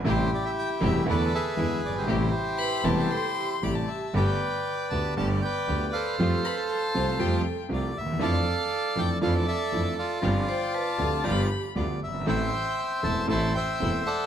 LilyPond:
<<
  \new Staff \with { instrumentName = "Violin" } { \time 4/4 \key a \minor \tempo 4 = 118 r1 | r4 b''8 a''8 c'''4 b''16 a''8. | \key g \mixolydian r1 | r8 b''8 a''4 g''8. r4 r16 |
r1 | r8 g''8 a''4 b''8. r4 r16 | r1 | }
  \new Staff \with { instrumentName = "Bandoneon" } { \time 4/4 \key a \minor << { c''8 d''16 e''16 g''8 e''8 d''8 e''4 d''16 c''16~ | c''2. d''8 e''8 | \key g \mixolydian g''4. a''8 a''8 g''4 f''8~ | f''2~ f''8 r8 d''8 e''8 |
f''4. g''8 f''8 e''4 d''8~ | d''2~ d''8 r8 d''8 e''8 | g''4. a''8 a''8 g''4 fis''8 | } \\ { <e' g'>2 <a' b'>8 <gis' b'>4~ <gis' b'>16 <e' g'>16~ | <e' g'>2. r4 | <b' d''>2 d''8 <b' d''>4 <a' c''>8~ | <a' c''>2~ <a' c''>8 r4. |
<a' d''>2 <a' d''>8 a'4 f'8~ | f'2~ f'8 r4. | <c'' e''>2 <c'' e''>8 <c'' e''>4 <a' d''>8 | } >> }
  \new Staff \with { instrumentName = "Vibraphone" } { \time 4/4 \key a \minor r1 | r4 b'4 a'16 g'4.~ g'16 | \key g \mixolydian r1 | r8 b'16 a'8. c''8 a'8. r4 r16 |
r1 | r8 c''8 b'8 a'8 g'8. r4 r16 | r1 | }
  \new Staff \with { instrumentName = "String section" } { \time 4/4 \key a \minor <a c' g'>8 r4 <a c' g'>8 <a d' e'>8 r8 <gis d' e'>8 r8 | <a c' g'>8 r4 <a c' g'>8 r4 <a c' g'>8 r8 | \key g \mixolydian <a b g'>8 r4 <a b g'>8 <a b g'>8 r8 <a b g'>8 r8 | <g a f'>8 r4 <g a f'>8 <g a f'>8 r8 <g a f'>8 r8 |
<f d' e'>8 r4 <f d' e'>8 <f d' e'>8 r8 <f d' e'>8 r8 | <g c' f'>8 r4 <g c' f'>8 <g b f'>8 r8 <g b f'>8 r8 | <a c' e'>8 r4 <a c' e'>8 <a c' e'>8 r8 <a c' e'>8 r8 | }
  \new Staff \with { instrumentName = "Grand piano" } { \clef bass \time 4/4 \key a \minor <a,, a, c g a e'>8 r4 <e,, e, c g a e'>8 <e, d e a b e'>8 r8 <e, d e gis b e'>8 r32 fis,,32 g,,32 gis,,32 | <a,, a, c g a e'>8 r4 <e,, e, c g a e'>8 r4 <a,, a, c g a e'>8 r8 | \key g \mixolydian <g,, g, d a b g'>8 r4 <d, d a b g'>8 <g,, g, d a b g'>8 r8 <d, d a b g'>8 r8 | <f, f a c' g'>8 r4 <c, c f a c' g'>8 <f, f a c' g'>8 r8 <c, c f a c' g'>8 r32 d,32 ees,32 e,32 |
<f, e f a d' f'>8 r4 <f, e f a d' f'>8 <f, e f a d' f'>8 r8 <f, e f a d' f'>8 r8 | <g,, g, f c' d' g'>8 r4 <d, d f c' d' g'>8 <g,, g, f b d' g'>8 r8 <d, d f b d' g'>8 r32 fis,,32 g,,32 aes,,32 | <a,, a, e a c' a'>8 r4 <e,, e, e a c' a'>8 <a,, a, e a c' a'>8 r8 <e,, e, e a c' a'>8 r8 | }
  \new Staff \with { instrumentName = "Double bass" } { \clef bass \time 4/4 \key a \minor a,,8 r4 e,,8 e,8 r8 e,8 g,,8 | a,,8 r4 e,,8 r4 a,,8 r8 | \key g \mixolydian g,,8 r4 d,8 g,,8 r8 d,8 r8 | f,8 r4 c,8 f,8 r8 c,8 ees,8 |
f,8 r4 f,8 f,8 r8 f,8 r8 | g,,8 r4 d,8 g,,8 r8 d,8 g,,8 | a,,8 r4 e,,8 a,,8 r8 e,,8 r8 | }
>>